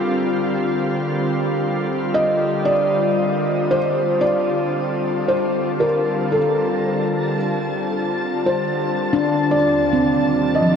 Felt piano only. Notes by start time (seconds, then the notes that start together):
2.14 D#5
2.65 D5
3.71 C5
4.21 D5
5.28 C5
5.80 A#4
6.32 A4
8.46 C5
9.51 D5
10.55 D#5